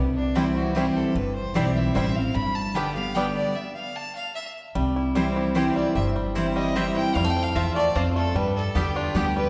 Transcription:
Already playing: C2 C3
0.16 D4
0.35 E3 G3 C4 E4 C5 G5
0.55 F#4
0.75 E3 G3 C4 E4 G4 C5 G5
0.96 A4
1.15 G1 G2 B4
1.35 C5
1.54 B1 E3 G3 C4 E4 C5 D5 G5
1.76 E5
1.94 A1 E3 G3 C4 E4 C5 E5 G5
2.14 C4 E4 F5
2.34 G1 G2 B5
2.55 A5
2.74 D3 G3 B3 D4 G4 D5 G5
2.94 B3 G4 F5
3.15 D3 G3 B3 D4 G4 D5 G5
3.35 D5
3.55 E5
3.74 F5
3.96 A5
4.15 F5
4.35 E5
4.75 C2 C3 G3
4.96 E4
5.15 E3 G3 C4 E4 C5 G5
5.36 E4
5.55 E3 G3 C4 E4 G4 C5 G5
5.76 G3 D5
5.95 G1 G2 C4 E5
6.16 G3
6.35 E3 G3 C4 E4 C5 G5
6.56 G3 D#5
6.75 E3 G3 C4 E4 C5 E5 G5
6.96 E4 G5
7.15 F2 G3 F5
7.24 A3
7.30 G5
7.37 C4
7.43 F5
7.55 E2 C4 F4 C5 E5 A5
7.75 A3 D5
7.95 F2 C4 F4 C5 A5
8.15 A3 A4
8.35 G2 G3 B4
8.56 A4
8.75 E2 D3 G3 B3 G4 D5 G5
8.96 D4 F4
9.15 D2 D3 G3 B3 G4 D5 G5
9.36 G3 B4

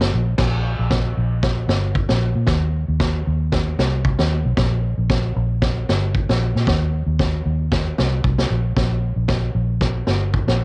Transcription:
Already playing: G1
0.01 snare
0.14 A#1
0.38 A#1, kick, snare, crash
0.79 A#1
0.91 kick, snare
1.17 A#1
1.43 kick, snare
1.68 G1, snare
1.95 kick
2.09 A#1, snare
2.35 A#2
2.46 D#2, kick, snare
2.88 D#2
3.00 kick, snare
3.27 D#2
3.52 kick, snare
3.78 C2, snare
4.05 kick
4.19 D#2, snare
4.45 B1
4.57 A#1, kick, snare
4.98 A#1
5.10 kick, snare
5.36 A#1
5.62 kick, snare
5.89 G1, snare
6.15 kick
6.29 A#1, snare
6.55 A#2, snare
6.67 D#2, kick, snare
7.06 D#2
7.19 kick, snare
7.46 D#2
7.72 kick, snare
7.98 C2, snare
8.24 C2, kick
8.38 snare
8.50 A#1
8.76 A#1, kick, snare
9.16 A#1
9.28 kick, snare
9.55 A#1
9.81 kick, snare
10.07 G1, snare
10.34 kick
10.48 A#1, snare

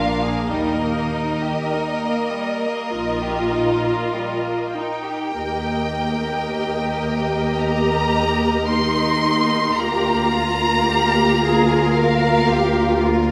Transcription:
Already playing: A#1 A#2 A#3 D4 F4 A#4 F5
0.24 G#4
0.47 D#2 D#3 G3 D#4 D#5
0.82 A#3
1.12 D#4
1.43 G4
1.71 A#3 D#4
2.02 A#3
2.31 G3
2.64 A#3
2.92 A#1 A#2 D#4 F4
3.25 G4
3.54 D#4
3.84 A#3
4.16 G3
4.46 A#3
4.76 D#4 G5
5.06 G4
5.36 D#2 A#3 G4 A#4 D#5
7.59 G4 A#5
8.69 D#4 C6
9.79 D2 A#3 F4 G4 A#4 F5 A#5
10.35 F4
10.89 G4
11.45 G#4
11.97 A#4 F5
12.51 G4
13.05 F4

